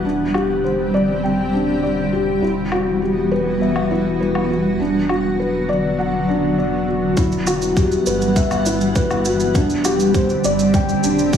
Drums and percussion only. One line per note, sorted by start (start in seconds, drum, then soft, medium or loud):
0.34 low woodblock medium
2.72 low woodblock medium
3.76 low woodblock medium
4.35 low woodblock soft
5.09 low woodblock medium
7.17 kick medium
7.17 shaker soft
7.32 shaker soft
7.47 low woodblock medium
7.47 shaker medium
7.62 shaker soft
7.77 kick medium
7.77 shaker soft
7.92 shaker soft
8.06 shaker medium
8.21 shaker soft
8.36 kick medium
8.36 shaker soft
8.51 low woodblock medium
8.51 shaker soft
8.66 shaker medium
8.81 shaker soft
8.96 kick medium
8.96 shaker soft
9.11 low woodblock medium
9.11 shaker soft
9.25 shaker medium
9.40 shaker soft
9.55 kick medium
9.55 shaker soft
9.70 shaker soft
9.85 low woodblock medium
9.85 shaker medium
10.00 shaker soft
10.14 kick medium
10.14 shaker soft
10.29 shaker soft
10.44 shaker medium
10.59 shaker soft
10.74 kick loud
10.74 shaker soft
10.89 shaker soft
11.04 shaker medium
11.19 shaker soft
11.33 kick loud
11.33 shaker soft